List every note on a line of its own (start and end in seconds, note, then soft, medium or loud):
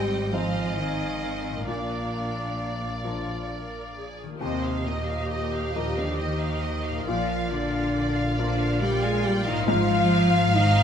0.00 1.64 G#1 medium
0.00 0.29 G#2 medium
0.00 1.63 G#2 medium
0.00 0.33 G3 medium
0.00 0.30 C4 medium
0.00 1.65 C4 soft
0.00 1.58 F4 soft
0.00 0.33 G4 medium
0.00 1.35 C5 medium
0.00 0.29 D#5 medium
0.00 1.70 D#5 soft
0.00 0.33 G5 medium
0.32 0.78 F3 medium
0.32 1.64 F3 soft
0.32 1.66 C4 medium
0.32 1.64 D#4 soft
0.32 0.78 F4 medium
0.32 1.65 C5 soft
0.32 1.66 D#5 medium
0.32 0.77 F5 medium
0.32 1.64 F5 medium
0.32 1.64 G#5 medium
0.76 1.66 D#3 medium
0.76 1.68 D#4 medium
0.76 1.67 D#5 medium
1.50 4.36 A#2 soft
1.54 4.26 A#3 soft
1.59 4.31 F4 soft
1.63 4.42 D5 soft
1.67 4.21 A#1 medium
1.67 3.01 A#2 soft
1.67 3.05 A#2 medium
1.67 3.04 A#3 medium
1.67 2.93 D4 medium
1.67 3.02 A#4 medium
1.67 4.05 D5 medium
1.67 4.17 D5 soft
1.67 4.05 F5 medium
3.04 4.37 F3 soft
3.04 4.38 D4 soft
3.04 3.47 F4 soft
3.04 4.38 A#4 soft
3.50 3.96 A#4 medium
3.96 4.41 G#4 medium
4.23 7.02 D#3 soft
4.28 6.93 A#3 soft
4.32 6.97 F4 soft
4.37 7.09 C5 medium
4.37 7.09 D#5 soft
4.41 5.72 D#2 medium
4.41 7.04 D#2 medium
4.41 4.83 C3 medium
4.41 4.83 C4 medium
4.41 7.03 G4 medium
4.41 4.83 C5 medium
4.41 5.72 D#5 medium
4.41 4.62 D#5 soft
4.41 5.72 D#5 medium
4.64 4.87 F5 soft
4.86 5.75 A#2 medium
4.86 5.74 A#3 medium
4.86 5.75 A#4 medium
4.86 5.09 D#5 soft
5.09 5.31 F5 soft
5.31 5.52 D#5 soft
5.54 5.76 F5 soft
5.75 5.98 A#2 medium
5.75 7.04 F3 soft
5.75 5.97 A#3 medium
5.75 7.04 D#4 soft
5.75 5.98 A#4 medium
5.75 7.04 A#4 soft
5.75 7.09 D#5 medium
5.75 5.98 D#5 medium
5.75 7.06 D#5 medium
5.97 6.20 D3 medium
5.97 6.20 D4 medium
5.97 6.20 D5 medium
5.97 6.20 F5 soft
6.19 7.08 D#3 medium
6.19 7.07 D#4 medium
6.19 6.40 D#5 soft
6.19 7.08 D#5 medium
6.41 6.63 F5 soft
6.63 6.85 D#5 soft
6.85 7.07 F5 soft
6.89 9.62 A#2 medium
6.94 9.64 A#3 soft
6.98 9.57 F4 soft
7.03 7.27 D5 medium
7.03 9.62 F5 soft
7.07 9.64 A#1 medium
7.07 8.35 A#2 medium
7.07 7.51 F3 medium
7.07 10.83 F4 medium
7.07 7.51 F4 medium
7.07 8.36 A#4 medium
7.07 8.36 D5 medium
7.07 7.50 F5 medium
7.07 8.38 F5 medium
7.28 7.50 F5 soft
7.50 8.38 D3 medium
7.50 8.38 D4 medium
7.50 7.73 D5 soft
7.50 8.37 D5 medium
7.73 7.95 F5 medium
7.94 8.15 D5 medium
8.16 8.38 F5 medium
8.37 8.81 D3 medium
8.37 9.64 F3 soft
8.37 8.81 D4 medium
8.37 9.64 F4 soft
8.37 9.64 A#4 medium
8.37 9.64 A#4 soft
8.37 8.60 D5 medium
8.37 8.81 D5 medium
8.37 9.66 D5 medium
8.37 9.65 F5 medium
8.60 8.81 F5 medium
8.81 9.03 G3 medium
8.81 9.03 G4 medium
8.81 9.01 D5 medium
8.81 9.03 G5 medium
9.02 9.24 G#3 medium
9.02 9.25 G#4 loud
9.02 9.25 F5 medium
9.02 9.24 G#5 medium
9.24 9.46 G3 medium
9.24 9.46 G4 loud
9.24 9.46 D5 medium
9.24 9.46 G5 medium
9.45 9.67 D#3 medium
9.45 9.68 D#4 loud
9.45 9.68 D#5 medium
9.45 9.66 F5 medium
9.50 10.83 G#2 medium
9.54 10.83 C4 medium
9.59 10.83 F4 medium
9.63 10.55 F4 loud
9.63 10.83 C5 medium
9.63 10.83 F5 medium
9.63 10.53 F5 loud
9.63 10.83 F5 medium
9.67 10.83 G#1 medium
9.67 10.83 G#2 medium
9.67 10.56 F3 loud
10.54 10.83 D#3 medium
10.54 10.83 D#4 loud
10.54 10.83 D#5 loud